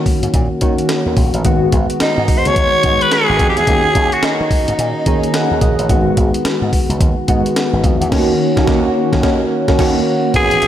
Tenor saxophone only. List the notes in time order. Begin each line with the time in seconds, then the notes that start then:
2.02 D#4
2.38 C5
2.47 C#5
3.02 B4
3.13 G#4
3.49 G4
3.57 G#4
4.14 F#4
4.25 D#4
10.36 G#4